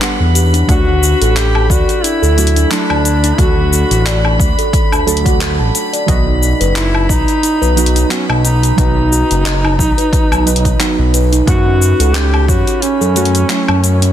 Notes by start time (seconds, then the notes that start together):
Already playing: D4 A4 F#5 B5
0.00 G3 B3 D4 F#5, clap, closed hi-hat, cabasa
0.20 E2
0.35 G4, closed hi-hat, cabasa
0.53 D4, closed hi-hat, cabasa
0.67 D2 D3 A3 D4 F#4 F#5, kick, closed hi-hat, cabasa
0.88 D4
1.03 cabasa
1.21 A1 A4, closed hi-hat, cabasa
1.36 D4 G4, clap, closed hi-hat, cabasa
1.55 low woodblock
1.70 D2 F#4 D5, kick, cabasa
1.89 closed hi-hat, cabasa
2.04 D4 E4, closed hi-hat, cabasa
2.22 D2 A4, cabasa
2.36 F#3 A3 D4 F#4, closed hi-hat, cabasa
2.47 closed hi-hat
2.56 D4, closed hi-hat, cabasa
2.70 F#3 A3 D4 E4, clap, closed hi-hat, cabasa
2.90 D2 D5, low woodblock
3.05 closed hi-hat, cabasa
3.23 D4, closed hi-hat, cabasa
3.37 D2 F#3 A3 D4 F#4 A4, kick, closed hi-hat, cabasa
3.72 D4, cabasa
3.91 A1, closed hi-hat, cabasa
4.06 D5, clap, closed hi-hat, cabasa
4.25 D4, low woodblock
4.40 D2, kick, cabasa
4.58 A4, closed hi-hat, cabasa
4.73 kick, closed hi-hat, cabasa
4.92 D2 D4, cabasa, low woodblock
5.06 F#3 A3 D4 A4, closed hi-hat, cabasa
5.17 closed hi-hat
5.24 F#3 A3 D4 F#5, kick, closed hi-hat, cabasa
5.28 F#4
5.41 clap, closed hi-hat, cabasa
5.59 A1 A5
5.75 closed hi-hat, cabasa
5.93 D5, closed hi-hat, cabasa
6.06 B1 F#3 B3 D#5, kick, closed hi-hat, cabasa
6.10 F#4
6.27 D#4
6.43 cabasa
6.60 F#1 B4, closed hi-hat, cabasa
6.76 D#4 E4, clap, closed hi-hat, cabasa
6.95 low woodblock
7.09 B1 D#4 D#5, kick, cabasa
7.28 closed hi-hat, cabasa
7.43 D#4, closed hi-hat, cabasa
7.62 B1 B4, cabasa
7.76 F#3 B3 D#4 F#4, closed hi-hat, cabasa
7.86 closed hi-hat
7.95 D#4, closed hi-hat, cabasa
8.09 F#3 B3 C#4 D#4 F#4, clap, closed hi-hat, cabasa
8.29 B1 D#5, low woodblock
8.44 D#4, closed hi-hat, cabasa
8.63 D#4, closed hi-hat, cabasa
8.76 B1 F#3 B3 D#4 F#4 B4, kick, closed hi-hat, cabasa
9.12 F#4, cabasa
9.30 F#1, closed hi-hat, cabasa
9.45 D#5, clap, closed hi-hat, cabasa
9.64 D#4, low woodblock
9.79 B1, kick, cabasa
9.98 B4, closed hi-hat, cabasa
10.13 kick, closed hi-hat, cabasa
10.31 B1 D#4, cabasa, low woodblock
10.45 F#3 B3 D#4 B4 D#5, closed hi-hat, cabasa
10.56 closed hi-hat
10.65 kick, closed hi-hat, cabasa
10.79 F#3 B3 D#4 F#4, clap, closed hi-hat, cabasa
10.99 B1
11.14 B4, closed hi-hat, cabasa
11.33 D#4, closed hi-hat, cabasa
11.45 F#2 C#3 A3 C#4 F#4, kick, closed hi-hat, cabasa
11.49 F#5
11.66 C#4
11.82 cabasa
12.00 C#2 A4, closed hi-hat, cabasa
12.15 C#4 G4, clap, closed hi-hat, cabasa
12.34 low woodblock
12.48 F#2 F#4 C#5, kick, cabasa
12.67 closed hi-hat, cabasa
12.82 C#4, closed hi-hat, cabasa
13.01 F#2 A4, cabasa
13.15 F#3 A3 C#4 F#4, closed hi-hat, cabasa
13.25 closed hi-hat
13.35 C#4, closed hi-hat, cabasa
13.48 F#3 A3 C#4 E4, clap, closed hi-hat, cabasa
13.68 F#2 C#5, low woodblock
13.84 closed hi-hat, cabasa
14.02 C#4, closed hi-hat, cabasa